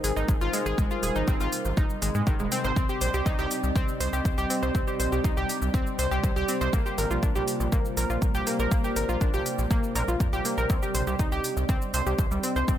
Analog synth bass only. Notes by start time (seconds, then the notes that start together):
0.04 G#1
0.17 G#1
0.29 G#1
0.41 G#1
0.66 G#1
0.78 G#1
1.03 D#1
1.16 G#1
1.28 G#1
1.41 G#1
1.65 G#1
1.77 G#1
2.02 G#1
2.15 G#2
2.27 G#1
2.40 D#1
2.65 G#1
2.76 C2
3.01 A#1
3.14 C2
3.26 C2
3.39 C2
3.64 C2
3.76 C2
4.00 C2
4.13 C2
4.25 C2
4.38 C2
4.63 C2
4.75 C2
5.00 A#1
5.12 C2
5.24 C2
5.37 C2
5.62 C2
5.74 C2
5.99 C2
6.12 C2
6.24 C2
6.36 C2
6.61 C2
6.73 A#1
6.98 G#1
7.11 A#1
7.23 A#1
7.36 A#1
7.60 A#1
7.72 A#1
7.97 A#1
8.10 A#1
8.22 A#1
8.35 A#1
8.59 A#1
8.72 A#1
8.96 G#1
9.09 A#1
9.21 A#1
9.34 A#1
9.59 A#1
9.71 A#1
9.95 A#1
10.08 A#1
10.20 F2
10.33 A#1
10.58 A#1
10.70 C2
10.95 A#1
11.07 C2
11.19 C2
11.32 C2
11.57 C2
11.69 C2
11.94 C2
12.06 C2
12.19 C2
12.31 C2
12.56 C2
12.68 C2